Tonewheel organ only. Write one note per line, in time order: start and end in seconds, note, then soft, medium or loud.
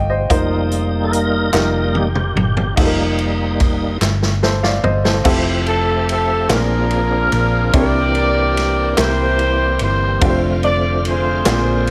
0.30 1.50 G3 medium
0.30 1.50 A#3 medium
0.30 1.51 D#4 medium
1.04 1.12 A4 medium
1.12 1.97 A#4 loud
1.52 2.08 G3 medium
1.52 2.08 A#3 soft
1.52 2.08 D#4 medium
1.96 2.75 G4 medium
2.77 3.97 G3 soft
2.77 3.98 A#3 soft
2.77 3.98 D#4 medium
5.25 6.48 F3 medium
5.25 6.49 A3 medium
5.25 6.48 C4 medium
5.25 6.49 G4 medium
5.25 6.49 E5 medium
6.49 7.73 F3 medium
6.49 7.73 A#3 medium
6.49 7.72 C4 medium
6.49 7.72 D4 medium
6.49 6.56 G4 medium
6.56 7.77 G#4 medium
7.73 7.80 D#3 medium
7.73 8.95 A#3 medium
7.73 8.95 C4 medium
7.73 8.97 D4 medium
7.73 8.96 G4 medium
7.80 8.96 E3 medium
8.96 10.21 E3 medium
8.96 10.21 G3 medium
8.96 10.21 A#3 medium
8.96 10.20 C4 medium
8.96 10.21 G4 medium
10.21 11.43 D3 medium
10.21 11.45 F3 medium
10.21 11.46 A3 medium
10.21 11.44 C4 medium
10.21 11.43 F4 medium
11.44 11.90 D3 medium
11.44 11.90 G#3 medium
11.44 11.90 A#3 medium
11.44 11.90 C4 medium
11.44 11.90 F4 medium